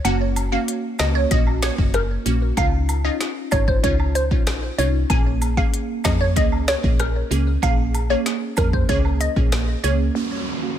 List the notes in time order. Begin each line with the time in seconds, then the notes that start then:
0.05 F#1 A#3 C#4 F#4 F#5, closed hi-hat, high woodblock
0.36 closed hi-hat, cabasa, high woodblock
0.52 A#3 C#4 F#4 F5
0.68 closed hi-hat
0.99 C#2 A#3 C#4 F#4 D#5, snare, closed hi-hat, cabasa, high woodblock
1.15 C#5
1.31 A#1 A#3 C#4 F#4 D#5, kick, closed hi-hat
1.47 high woodblock
1.62 C#5, snare, closed hi-hat, cabasa
1.78 F#1 A#3 C#4 F#4, kick
1.94 A#4, cross-stick, closed hi-hat
2.26 A#1 A#3 C#4 F#4, closed hi-hat, cabasa
2.57 C#2 C#4 D#4 F4 F5, kick, closed hi-hat, high woodblock
2.89 closed hi-hat, cabasa, high woodblock
3.04 C#4 D#4 F4 D#5
3.21 snare, closed hi-hat
3.51 G#1 C#4 D#4 F4 C#5, kick, closed hi-hat, cabasa, high woodblock
3.68 C5, kick
3.83 C#2 C#4 D#4 F4 C#5, kick, closed hi-hat
4.00 high woodblock
4.15 C5, closed hi-hat, cabasa
4.31 A#1 C#4 D#4 F4, kick
4.47 cross-stick, snare, closed hi-hat
4.78 C2 C#4 D#4 F4 C#5, closed hi-hat, cabasa
5.10 A#1 A#3 C#4 G#4 G#5, kick, closed hi-hat, high woodblock
5.42 closed hi-hat, cabasa, high woodblock
5.57 A#3 C#4 G#4 F5, kick
5.74 closed hi-hat
6.04 F2 A#3 C#4 G#4 D#5, kick, snare, closed hi-hat, cabasa, high woodblock
6.21 C#5
6.36 C#2 A#3 C#4 G#4 D#5, kick, closed hi-hat
6.52 high woodblock
6.68 C#5, snare, closed hi-hat, cabasa
6.83 A#1 A#3 C#4 G#4, kick
7.00 A#4, cross-stick, closed hi-hat
7.31 C#2 A#3 C#4 G#4, closed hi-hat, cabasa
7.62 A#1 A#3 C#4 G#4 F5, kick, closed hi-hat, high woodblock
7.94 closed hi-hat, cabasa, high woodblock
8.10 A#3 C#4 G#4 C#5
8.26 snare, closed hi-hat
8.57 F2 A#3 C#4 G#4 A#4, kick, closed hi-hat, cabasa, high woodblock
8.73 C5, kick
8.89 C#2 A#3 C#4 G#4 C#5, kick, closed hi-hat
9.05 high woodblock
9.21 D#5, closed hi-hat, cabasa
9.36 A#1 A#3 C#4 G#4, kick
9.52 cross-stick, snare, closed hi-hat
9.84 C#2 A#3 C#4 G#4 C#5, closed hi-hat, cabasa
10.15 A#3 C#4 F#4 F#5, downlifter
10.62 A#3 C#4 F#4 F5